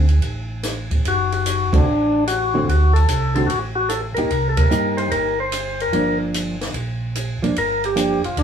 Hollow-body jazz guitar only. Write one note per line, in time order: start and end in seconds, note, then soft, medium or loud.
1.73 1.85 D3 medium
1.73 1.85 A3 medium
1.73 1.85 C4 medium
1.73 1.85 F#4 medium
2.54 2.66 D3 medium
2.54 2.67 A3 medium
2.54 2.67 C4 medium
2.54 2.67 F#4 medium
3.36 3.48 D3 medium
3.36 3.48 A3 medium
3.36 3.48 C4 medium
3.36 3.48 F#4 medium
4.18 4.29 A#3 soft
4.18 4.30 D#4 medium
4.18 4.30 G4 medium
4.71 5.33 A#3 medium
4.71 5.33 D#4 medium
4.71 5.34 G4 medium
5.93 6.55 F3 medium
5.93 6.56 A#3 soft
5.93 6.56 D4 medium
7.42 7.54 F3 soft
7.42 7.55 A#3 medium
7.42 7.55 D4 medium
7.96 8.20 F3 medium
7.96 8.20 A#3 medium
7.96 8.21 D4 medium